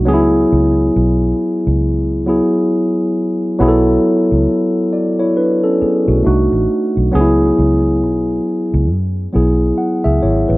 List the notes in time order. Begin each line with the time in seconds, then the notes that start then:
0.05 C#2 F#3 B3 D4 G#4
0.14 E4
0.52 C#2
0.96 B1
1.67 C#2
2.26 F#3 B3 E4 G#4
3.59 B1 F#3 B3 E4 G#4
3.68 A4
4.32 C#2
4.93 F#4 D5
5.19 E4 C#5
5.37 D4 B4
5.64 C#4 A4
5.81 B3 G#4, muted fingered electric bass stroke
6.08 B1 A3 F#4
6.23 C2 A3 D4 D#4 F#4
6.52 A1
6.97 B1
7.12 C#2 F#3 B3 D4 G#4
7.20 E4
7.59 C#2
8.03 B1
8.74 C#2
8.91 F#2
9.33 B1 F#3 B3 E4 G#4
9.78 F#5
10.04 C#2 G#4 E5
10.22 G#1 E4 C#5
10.48 A1 B4